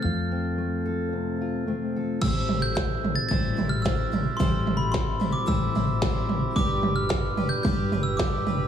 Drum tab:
CC |--------|x-------|--------|--------|
SD |--------|--o---o-|--o---o-|--o---o-|
FT |--------|oooooooo|oooooooo|oooooooo|
BD |--------|o-o-o-o-|o-o-o-o-|o-o-o-o-|